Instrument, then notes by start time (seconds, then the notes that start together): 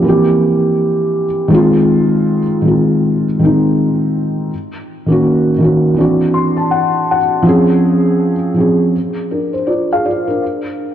felt piano
0.02 E3 A#3
0.06 C4 G4
1.48 D#3 G#3
1.52 C4 F4
2.62 D#3 G#3 C4
2.68 F4
3.39 D#3 G#3 C4
3.45 D#4
5.06 D#3 A#3 C#4
5.12 F#4
5.58 D#3 A#3 C#4
5.64 F#4
5.94 E3 C4
5.98 D4 F#4
6.34 C6
6.57 A5
6.71 F#5
7.11 F#5
7.42 F3 C4 C#4
7.48 G#4
8.54 F3 C4
8.58 C#4 G#4
9.31 D4 A#4
9.53 C5
9.67 F4 D5
9.93 G#4 F5
10.05 F4 D5
10.27 D4 A#4